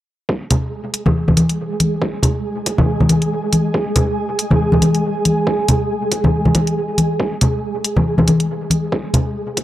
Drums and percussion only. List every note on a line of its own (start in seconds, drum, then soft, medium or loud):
0.29 kick loud
0.51 closed hi-hat medium
0.51 low conga medium
0.94 closed hi-hat medium
1.06 high conga medium
1.06 low conga medium
1.28 high conga medium
1.28 low conga medium
1.37 closed hi-hat medium
1.37 high conga medium
1.49 closed hi-hat soft
1.80 closed hi-hat medium
1.80 high conga medium
2.02 kick loud
2.23 closed hi-hat medium
2.23 low conga medium
2.66 kick medium
2.66 closed hi-hat medium
2.78 high conga medium
2.78 low conga loud
3.00 high conga medium
3.00 low conga medium
3.09 closed hi-hat medium
3.09 high conga medium
3.22 closed hi-hat soft
3.53 closed hi-hat medium
3.53 high conga medium
3.74 kick loud
3.96 closed hi-hat medium
3.96 low conga medium
4.39 closed hi-hat medium
4.51 high conga medium
4.51 low conga medium
4.72 high conga medium
4.72 low conga medium
4.82 closed hi-hat medium
4.82 high conga medium
4.95 closed hi-hat soft
5.25 closed hi-hat medium
5.25 high conga medium
5.47 kick loud
5.68 closed hi-hat medium
5.68 low conga medium
6.12 kick medium
6.12 closed hi-hat medium
6.24 high conga medium
6.24 low conga medium
6.45 high conga medium
6.45 low conga medium
6.55 kick medium
6.55 closed hi-hat medium
6.55 high conga medium
6.67 closed hi-hat soft
6.98 closed hi-hat medium
6.98 high conga medium
7.20 kick loud
7.41 closed hi-hat medium
7.41 low conga medium
7.84 closed hi-hat medium
7.97 high conga medium
7.97 low conga medium
8.18 high conga medium
8.18 low conga medium
8.28 closed hi-hat medium
8.28 high conga medium
8.40 closed hi-hat soft
8.70 closed hi-hat medium
8.70 high conga medium
8.92 kick loud
9.14 closed hi-hat medium
9.14 low conga medium
9.57 kick medium
9.57 closed hi-hat medium